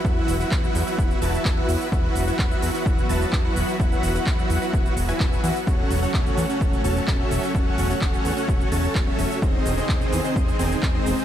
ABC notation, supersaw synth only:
X:1
M:4/4
L:1/16
Q:1/4=128
K:E
V:1 name="Supersaw synth"
[EFBef]3 [EFBef]4 [EFBef]3 [EFBea]3 [EFBef]3 | [EFBef]3 [EFBef]4 [EFBef]3 [EFBea]3 [EFBef]3 | [EFBef]3 [EFBef]4 [EFBef]3 z [EFBeg]3 [EFBef] z | [CFAcf]3 [CFAcf]4 [CFAcf]3 [CFAca]3 [CFAce]3 |
[CFAcf]3 [CFAcf]4 [CFAcf]3 [CFAca]3 [CFAce]3 | [^B,D^Bd]3 [B,DGBd]4 [B,DGBd]3 [B,DGBg]3 [B,DGBd]3 |]